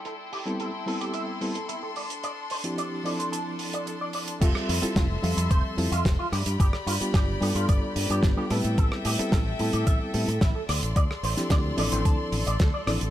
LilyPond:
<<
  \new Staff \with { instrumentName = "String section" } { \time 4/4 \key a \minor \tempo 4 = 110 << { <a' c'''>1~ | <a' c'''>1 | <e'' c'''>2.~ <e'' c'''>8 <d'' b''>8~ | <d'' b''>2.~ <d'' b''>8 e''8~ |
e''2.~ e''8 <d'' c'''>8~ | <d'' c'''>1 | } \\ { <e' g''>2.~ <e' g''>8 d'8~ | d'1 | a'2.~ a'8 g'8~ | g'2.~ g'8 <a' g''>8~ |
<a' g''>2.~ <a' g''>8 a'8~ | a'1 | } >> }
  \new Staff \with { instrumentName = "Clean electric guitar" } { \time 4/4 \key a \minor a'16 r16 g'16 r16 a'16 r16 a'16 g'16 e''16 r8 a'16 e'16 a'16 d''16 r16 | d''16 r16 c''16 r16 d''16 r16 d''16 c''16 a''16 r8 d''16 a'16 d''16 d''16 r16 | f'16 r16 e'16 r16 f'16 r16 f'16 e'16 c''16 r8 f'16 c'16 f'16 g'16 r16 | g'16 r16 f'16 r16 g'16 r16 g'16 f'16 d''16 r8 g'16 d'16 g'16 a'16 r16 |
a'16 r16 g'16 r16 a'16 r16 a'16 g'16 e''16 r8 a'16 e'16 a'16 d''16 r16 | d''16 r16 c''16 r16 d''16 r16 d''16 c''16 a''16 r8 d''16 a'16 d''16 d''16 r16 | }
  \new Staff \with { instrumentName = "Reed electric piano" } { \time 4/4 \key a \minor r8. <g b c' e' a'>8 r16 <g b c' e' a'>4 <g b c' e' a'>16 r4 r16 | r8. <f c' d' e' g'>8. <f c' d' e' a'>2~ <f c' d' e' a'>8 | <g c' f' a' e''>8. <g c' e' f' a'>8 r16 <f g c' a' e''>4 <g c' e' f' a'>16 r4 r16 | r8. <g b d' f' g'>8. <g b d' f' a'>4~ <g b d' f' a'>16 <g b d' f' b'>8 <g b d' f' a'>16 <g b c' e' b'>8~ |
<g b c' e' b'>8. <g b c' e' a'>8 r16 <g b c' e' a'>4 <g b c' e' a'>16 r4 r16 | r8. <f c' d' e' g'>8. <f c' d' e' a'>4~ <f c' d' e' a'>16 r8. <f c' d' e' a'>16 r16 | }
  \new Staff \with { instrumentName = "Fingered electric bass" } { \clef bass \time 4/4 \key a \minor r1 | r1 | f,,16 r16 f,16 r16 f,,16 r16 f,16 f,16 f,,16 r16 f,16 f,16 f,,16 r16 g,16 g,16 | g,,16 r16 g,16 r16 g,,16 r16 g,16 g,16 g,,16 r16 g,16 g,16 g,,16 r16 a,16 a,16 |
a,,16 r16 a,16 r16 a,,16 r16 a,16 a,16 a,,16 r16 a,16 a,16 a,,16 r16 d,16 a,,16 | d,16 r16 a,,16 r16 d,16 r16 a,,16 a,,16 d,16 r16 a,,16 a,,16 d,16 r16 a,,16 a,,16 | }
  \new DrumStaff \with { instrumentName = "Drums" } \drummode { \time 4/4 hh8 hho16 hh16 hh8 hho16 hh16 hh8 hho16 hh16 hh8 hho16 hh16 | hh8 hho16 hh16 hh8 hho16 hh16 hh8 hho16 hh16 hh8 hho16 hh16 | <cymc hh bd>16 ss16 hho16 hh16 <hh bd sn>8 hho16 hh16 <hh bd>8 hho16 hh16 <hh bd sn>8 <hho ss>16 hh16 | <hh bd>16 ss16 hho16 hh16 <hh bd sn>8 hho16 hh16 <hh bd>8 hho16 hh16 <hh bd sn>8 <hho ss>16 hh16 |
<hh bd>16 ss16 hho16 hh16 <hh bd sn>8 hho16 hh16 <hh bd>8 hho16 hh16 <hh bd sn>8 <hho ss>16 hh16 | <hh bd>16 ss16 hho16 <hh sn>16 <hh bd sn>8 hho16 hh16 <hh bd>8 hho16 hh16 <hh bd sn>8 <hho ss>16 hh16 | }
>>